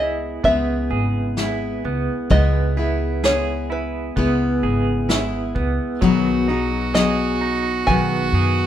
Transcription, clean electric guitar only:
Already playing: B3 E4 G#4
0.44 B3
0.91 G#4
1.38 E4
1.85 B3
2.31 B3
2.77 E4
3.24 G#4
3.70 E4
4.16 B3
4.63 G#4
5.09 E4
5.55 B3
6.01 F#3
6.48 D#4
6.94 G#4
7.41 D#4
7.87 B3
8.34 G#4

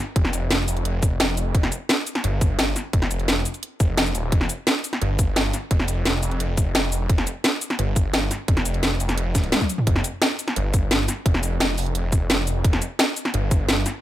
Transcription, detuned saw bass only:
0.16 F1
0.33 F1
0.68 F1
1.20 F1
1.55 F1
2.24 G1
2.93 F1
3.11 F1
3.80 F1
4.15 D#1
4.32 F1
5.01 G1
5.71 F1
5.88 F1
6.23 F1
6.75 F1
7.10 F1
7.79 G1
8.48 F1
8.66 F1
9.00 F1
9.87 F1
10.56 G1
11.26 F1
11.43 F1
11.78 F1
12.30 F1
12.64 F1
13.34 G1

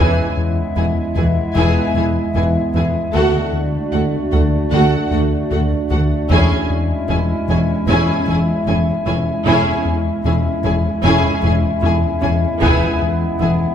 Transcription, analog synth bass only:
0.00 E2
0.37 E2
0.76 E2
1.16 E2
1.55 E2
1.94 E2
2.34 E2
2.74 E2
3.14 D2
3.53 D2
3.93 D2
4.33 D2
4.71 D2
5.11 D2
5.51 D2
5.91 D2
6.30 E2
6.70 E2
7.09 E2
7.48 E2
7.88 E2
8.28 E2
8.67 E2
9.07 E2
9.46 E2
9.85 E2
10.25 E2
10.64 E2
11.04 E2
11.43 E2
11.83 E2
12.23 E2
12.62 E2
13.02 E2
13.42 E2

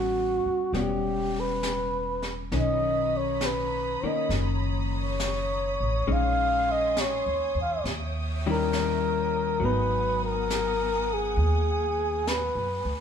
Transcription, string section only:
2.52 C#5 A#5 B5 D#6
6.08 G#5 C6
7.85 E5 G5
9.61 B3 F#5 G#5 D#6

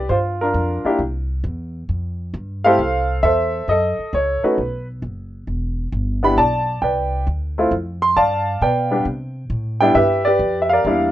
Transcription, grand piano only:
Already playing: D5
0.09 F4 C5
0.41 D4 F4 A#4
0.85 A#3 D4 E4 G4
2.64 A3 C4 E4 G4 A4 C5 F5
3.23 A4 C5 E5
3.69 A4 D#5
4.14 C#5
4.43 A3 C#4 D#4 F#4 B4
6.23 B3 D4 E4 G4 B5
6.38 D5 A5
6.82 B4 D5 G5
7.58 A3 C4 E4 F4
8.02 C6
8.17 D5 F5 A5
8.62 B4 D5 G5
8.91 G3 B3 D4 G4
9.80 G3 B3 D4 E4 G5
9.95 G4 B4 E5
10.25 G4 B4 D5
10.62 E5
10.69 A#4 D5 F5
10.86 G3 A#3 D4 E4

